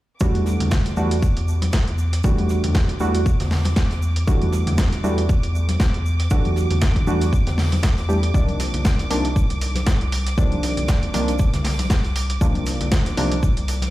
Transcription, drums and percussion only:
0.20 kick, shaker
0.35 closed hi-hat, high conga
0.46 snare, shaker
0.60 closed hi-hat, low conga
0.71 kick, snare, shaker
0.85 snare, closed hi-hat
0.97 high conga, shaker
1.11 closed hi-hat
1.22 kick, shaker
1.37 closed hi-hat
1.48 shaker
1.62 snare, closed hi-hat, high conga
1.73 kick, snare, shaker
1.88 closed hi-hat
1.98 shaker
2.13 snare, closed hi-hat
2.24 kick, shaker
2.38 closed hi-hat, high conga
2.49 snare, shaker
2.64 closed hi-hat, low conga
2.75 kick, snare, shaker
2.89 closed hi-hat
3.00 high conga, shaker
3.15 closed hi-hat
3.26 kick, shaker
3.40 snare, closed hi-hat, low conga
3.51 snare, open hi-hat
3.65 snare, closed hi-hat, high conga
3.76 kick, snare, shaker
3.91 snare, closed hi-hat
4.02 shaker
4.16 closed hi-hat
4.28 kick, shaker
4.42 closed hi-hat, high conga
4.52 snare, shaker
4.67 closed hi-hat, low conga
4.78 kick, snare, shaker
4.92 snare, closed hi-hat
5.04 high conga, shaker
5.18 closed hi-hat
5.29 kick, shaker
5.43 closed hi-hat
5.55 shaker
5.69 snare, closed hi-hat, high conga
5.80 kick, snare, shaker
5.94 closed hi-hat
6.06 shaker
6.20 snare, closed hi-hat
6.30 kick, shaker
6.45 closed hi-hat, high conga
6.56 snare, shaker
6.71 closed hi-hat, low conga
6.81 kick, snare, shaker
6.96 kick, closed hi-hat
7.07 high conga, shaker
7.21 closed hi-hat
7.33 kick, shaker
7.47 snare, closed hi-hat, low conga
7.58 snare, open hi-hat
7.72 snare, closed hi-hat, high conga
7.83 kick, snare, shaker
7.97 snare, closed hi-hat
8.10 shaker
8.23 closed hi-hat
8.34 kick, shaker
8.48 closed hi-hat, high conga
8.60 snare, open hi-hat, shaker
8.74 closed hi-hat, low conga
8.85 kick, snare, shaker
8.99 snare, closed hi-hat
9.10 open hi-hat, high conga, shaker
9.25 closed hi-hat
9.36 kick, shaker
9.50 closed hi-hat
9.61 open hi-hat, shaker
9.75 snare, closed hi-hat, high conga
9.86 kick, snare, shaker
10.01 closed hi-hat
10.12 open hi-hat, shaker
10.26 snare, closed hi-hat
10.38 kick, shaker
10.52 closed hi-hat, high conga
10.63 snare, open hi-hat, shaker
10.77 closed hi-hat, low conga
10.88 kick, snare, shaker
11.03 closed hi-hat
11.14 open hi-hat, high conga, shaker
11.28 closed hi-hat
11.39 kick, shaker
11.53 snare, closed hi-hat, low conga
11.65 snare, open hi-hat
11.79 snare, closed hi-hat, high conga
11.90 kick, snare, shaker
12.04 snare, closed hi-hat
12.16 open hi-hat, shaker
12.30 closed hi-hat
12.41 kick, shaker
12.55 closed hi-hat, high conga
12.66 snare, open hi-hat, shaker
12.81 closed hi-hat, low conga
12.92 kick, snare, shaker
13.06 snare, closed hi-hat
13.17 open hi-hat, high conga, shaker
13.32 closed hi-hat
13.43 kick, shaker
13.57 closed hi-hat
13.68 open hi-hat, shaker
13.82 snare, closed hi-hat, high conga

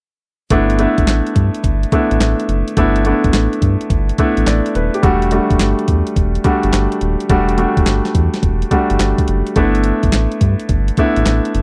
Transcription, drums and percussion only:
0.50 kick, closed hi-hat
0.70 closed hi-hat
0.79 closed hi-hat
0.98 kick, closed hi-hat
1.07 snare, clap, closed hi-hat
1.27 closed hi-hat
1.36 kick, closed hi-hat
1.54 closed hi-hat
1.64 kick, closed hi-hat
1.83 closed hi-hat
1.92 kick, closed hi-hat
2.11 closed hi-hat
2.20 snare, clap, closed hi-hat
2.40 closed hi-hat
2.49 closed hi-hat
2.68 closed hi-hat
2.77 kick, closed hi-hat
2.96 closed hi-hat
3.05 closed hi-hat
3.24 kick, closed hi-hat
3.33 snare, clap, closed hi-hat
3.53 closed hi-hat
3.62 kick, closed hi-hat
3.81 closed hi-hat
3.90 kick, closed hi-hat
4.09 closed hi-hat
4.18 kick, closed hi-hat
4.37 closed hi-hat
4.46 snare, clap, closed hi-hat
4.66 closed hi-hat
4.75 closed hi-hat
4.94 closed hi-hat
5.03 kick, closed hi-hat
5.22 closed hi-hat
5.31 closed hi-hat
5.50 kick, closed hi-hat
5.59 snare, clap, closed hi-hat
5.79 closed hi-hat
5.88 kick, closed hi-hat
6.07 closed hi-hat
6.16 kick, closed hi-hat
6.35 closed hi-hat
6.44 kick, closed hi-hat
6.63 closed hi-hat
6.73 snare, clap, closed hi-hat
6.92 closed hi-hat
7.01 closed hi-hat
7.20 closed hi-hat
7.29 kick, closed hi-hat
7.49 closed hi-hat
7.58 closed hi-hat
7.77 kick, closed hi-hat
7.86 snare, clap, closed hi-hat
8.05 snare, closed hi-hat
8.15 kick, closed hi-hat
8.34 snare, closed hi-hat
8.43 kick, closed hi-hat
8.62 closed hi-hat
8.71 kick, closed hi-hat
8.90 closed hi-hat
8.99 snare, clap, closed hi-hat
9.18 kick, closed hi-hat
9.28 closed hi-hat
9.47 closed hi-hat
9.56 kick, closed hi-hat
9.75 closed hi-hat
9.84 closed hi-hat
10.03 kick, closed hi-hat
10.12 snare, clap, closed hi-hat
10.32 closed hi-hat
10.41 kick, closed hi-hat
10.60 closed hi-hat
10.69 kick, closed hi-hat
10.88 closed hi-hat
10.97 kick, closed hi-hat
11.16 closed hi-hat
11.26 snare, clap, closed hi-hat
11.45 closed hi-hat
11.55 closed hi-hat

